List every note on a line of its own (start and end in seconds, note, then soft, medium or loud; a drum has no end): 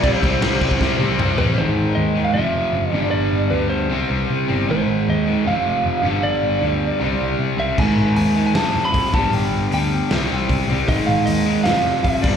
0.03 0.22 C2 loud
0.03 0.21 C3 loud
0.03 0.22 G3 loud
0.03 0.23 C4 loud
0.03 1.35 C5 medium
0.03 kick loud
0.03 crash medium
0.23 0.41 C2 medium
0.23 0.41 C3 loud
0.23 0.42 G3 medium
0.23 0.42 C4 medium
0.23 kick loud
0.23 crash medium
0.41 0.60 C2 loud
0.41 0.60 C3 medium
0.41 0.61 G3 medium
0.41 0.62 C4 loud
0.41 snare loud
0.41 crash loud
0.61 0.80 C2 medium
0.61 0.79 C3 medium
0.61 0.80 G3 medium
0.61 0.81 C4 loud
0.61 kick medium
0.61 crash medium
0.71 kick medium
0.81 0.98 C2 medium
0.81 0.99 C3 medium
0.81 1.00 G3 loud
0.81 1.00 C4 loud
0.81 kick loud
0.81 snare medium
0.99 1.17 C2 medium
0.99 1.17 C3 medium
0.99 1.18 G3 medium
0.99 1.19 C4 loud
0.99 high tom medium
1.17 1.37 C2 loud
1.17 1.37 C3 medium
1.17 1.38 G3 loud
1.17 1.38 C4 loud
1.17 mid tom loud
1.37 1.56 A1 medium
1.37 1.57 C3 medium
1.37 1.57 G3 loud
1.37 1.57 C4 loud
1.37 1.44 B4 medium
1.37 floor tom medium
1.56 1.71 G#1 loud
1.56 2.15 G#2 medium
1.56 2.16 D#3 medium
1.56 1.98 C5 medium
1.61 2.14 G#3 medium
1.77 1.91 G#1 medium
1.95 2.24 D#2 medium
1.95 2.23 D#5 medium
2.15 2.34 G#2 medium
2.15 2.35 D#3 medium
2.15 2.34 G#3 medium
2.24 2.33 F5 medium
2.34 2.49 F1 medium
2.34 2.92 F2 medium
2.34 2.93 C3 loud
2.34 2.93 E5 medium
2.38 2.94 F3 loud
2.55 2.69 F1 medium
2.74 2.88 F#1 loud
2.93 3.07 G1 medium
2.93 3.49 G2 medium
2.93 3.51 D3 loud
2.93 3.52 G3 loud
2.93 3.10 D5 medium
3.11 3.27 G1 medium
3.11 3.52 D5 medium
3.33 3.47 G1 medium
3.50 3.91 D2 medium
3.50 3.89 G2 medium
3.50 3.90 D3 medium
3.50 3.91 G3 medium
3.50 3.69 B4 medium
3.70 4.06 C5 medium
3.90 4.05 C2 medium
3.90 4.47 C3 medium
3.90 4.48 G3 medium
3.90 4.47 C4 loud
4.10 4.24 C2 medium
4.30 4.44 C3 medium
4.48 4.63 G1 medium
4.48 4.68 G3 medium
4.48 4.67 C4 medium
4.52 4.69 C3 medium
4.68 4.83 G#1 loud
4.68 5.25 G#2 medium
4.68 5.26 D#3 loud
4.68 5.25 G#3 loud
4.68 5.09 C5 medium
4.88 5.02 G#1 medium
5.08 5.35 D#2 medium
5.08 5.47 D#5 medium
5.26 5.44 G#2 medium
5.26 5.45 D#3 medium
5.26 5.44 G#3 medium
5.45 5.60 F1 medium
5.45 6.02 F2 medium
5.45 6.03 C3 medium
5.45 6.04 F3 medium
5.45 6.20 F5 medium
5.67 5.80 F1 medium
5.86 5.99 F1 loud
6.03 6.18 G1 medium
6.03 6.60 G2 medium
6.03 6.61 D3 medium
6.03 6.62 G3 medium
6.23 6.37 G1 loud
6.23 7.35 D5 medium
6.43 6.57 G1 medium
6.61 6.90 D2 medium
6.61 6.99 G2 medium
6.61 6.99 D3 medium
6.61 7.00 G3 medium
7.00 7.15 C2 medium
7.00 7.57 C3 medium
7.00 7.58 G3 medium
7.00 7.56 C4 medium
7.20 7.34 C2 medium
7.39 7.53 C3 medium
7.57 7.72 C2 medium
7.57 7.78 C3 medium
7.57 7.77 G3 medium
7.57 7.76 C4 medium
7.57 7.79 E5 medium
7.76 7.92 G#1 loud
7.76 8.34 G#2 medium
7.76 8.35 D#3 medium
7.76 8.34 G#3 loud
7.76 8.15 G#5 medium
7.76 kick loud
7.76 crash medium
7.97 8.11 G#1 medium
8.16 8.44 D#2 medium
8.16 8.45 G#5 medium
8.16 open hi-hat medium
8.35 8.53 G#2 medium
8.35 8.55 D#3 medium
8.35 8.54 G#3 medium
8.46 8.56 G#5 medium
8.54 8.69 F1 medium
8.54 9.12 F2 medium
8.54 9.13 C3 medium
8.54 8.86 A5 loud
8.54 snare loud
8.54 open hi-hat medium
8.58 9.14 F3 loud
8.75 8.89 F1 medium
8.85 9.15 B5 medium
8.94 9.08 F2 loud
8.94 kick medium
8.94 open hi-hat medium
9.13 9.28 G1 medium
9.13 9.69 G2 medium
9.13 9.71 D3 loud
9.13 9.72 G3 loud
9.13 9.34 A5 medium
9.13 kick loud
9.33 9.47 G1 loud
9.33 9.73 G5 loud
9.33 open hi-hat medium
9.53 9.66 G1 medium
9.71 10.00 D2 medium
9.71 10.09 G2 medium
9.71 10.09 D3 medium
9.71 10.10 G3 medium
9.71 10.09 G5 medium
9.71 open hi-hat medium
10.10 10.25 C2 medium
10.10 10.67 C3 medium
10.10 10.68 G3 loud
10.10 10.67 C4 loud
10.10 snare loud
10.10 open hi-hat medium
10.31 10.45 C2 medium
10.49 10.63 C3 loud
10.49 kick medium
10.49 open hi-hat medium
10.68 10.83 C2 loud
10.68 10.88 C3 medium
10.68 10.88 G3 medium
10.68 10.87 C4 medium
10.87 11.02 G#1 medium
10.87 11.45 G#2 loud
10.87 11.46 D#3 loud
10.87 11.06 D#5 loud
10.87 kick medium
10.87 open hi-hat medium
10.91 11.44 G#3 medium
11.06 11.22 G#1 medium
11.06 11.25 F5 loud
11.26 11.55 D#2 medium
11.26 11.63 D#5 medium
11.26 open hi-hat medium
11.45 11.64 G#2 medium
11.45 11.65 D#3 medium
11.45 11.64 G#3 medium
11.64 11.80 F1 medium
11.64 12.22 F2 medium
11.64 12.23 C3 medium
11.64 12.01 F5 loud
11.64 snare loud
11.64 open hi-hat medium
11.68 12.24 F3 loud
11.85 11.99 F1 medium
12.04 12.19 F2 loud
12.04 12.22 E5 loud
12.04 kick medium
12.04 open hi-hat medium
12.22 12.37 G1 loud
12.22 12.37 G2 loud
12.22 12.37 D3 medium
12.22 12.37 G3 loud
12.22 12.37 D5 medium
12.22 kick loud
12.22 crash loud